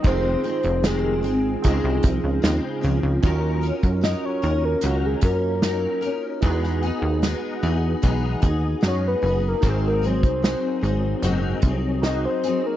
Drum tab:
HH |x-xxx-x-x-x-x-x-|x-xxx-x-x-x-x-x-|x-x-x-x-x-x-x-o-|x-xxx-x-x-x-x-x-|
SD |----o-------o---|----o-------o---|-o--o-------o---|----o-------o---|
BD |o-------o-o-----|o--o------o-----|o-------o-o-----|o--o------o-----|